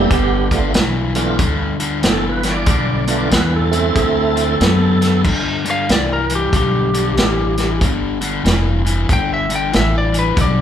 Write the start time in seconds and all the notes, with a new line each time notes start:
Already playing: G3 A#3 B3 D4 E4 G4
0.10 G1 G2 D3, kick, closed hi-hat
0.51 G2 D3 A3 B3 D4 F4, kick, closed hi-hat
0.74 B1 G2 E3, snare, closed hi-hat
1.15 G2 E3 A3 B3 D4 F4, closed hi-hat
1.39 D2 G2 D3, kick, closed hi-hat
1.80 G2 D3, closed hi-hat
2.03 G1 G2 E3, snare, closed hi-hat
2.07 A4
2.29 B4
2.43 G2 E3 C#5, snare, closed hi-hat
2.50 D5
2.66 B1 G2 D3, kick, closed hi-hat
3.07 G2 D3 A3 B3 D4 F4, closed hi-hat
3.31 E2 G2 E3 B4, snare, closed hi-hat
3.56 A4
3.71 G2 E3 A3 C4 E4 A4, closed hi-hat
3.78 A4
3.94 D2 D3 A3 G#4, kick, closed hi-hat
3.99 A4
4.36 D3 A3, closed hi-hat
4.60 F#2 D3 B3, snare, closed hi-hat
5.01 D3 B3, snare, closed hi-hat
5.25 G2 D3, kick, crash
5.65 G2 D3, closed hi-hat
5.71 F5
5.89 C2 G2 E3 D5, snare, closed hi-hat
6.13 A#4
6.30 G2 E3, closed hi-hat
6.35 G4
6.53 B1 G2 D3 G4, kick, closed hi-hat
6.94 G2 D3, closed hi-hat
7.17 A1 G2 E3, snare, closed hi-hat
7.57 G2 E3, snare, closed hi-hat
7.81 G1 G2 D3, kick, closed hi-hat
8.21 G2 D3, closed hi-hat
8.44 F1 G2 E3, snare, closed hi-hat
8.85 G2 E3, closed hi-hat
9.09 G1 G2 D3 G5, kick, closed hi-hat
9.34 E5
9.49 G2 D3, closed hi-hat
9.55 G5
9.72 A1 G2 E3, snare, closed hi-hat
9.76 E5
9.98 D5
10.12 G2 E3, closed hi-hat
10.19 B4
10.36 B1 G2 D3, kick, closed hi-hat
10.41 D5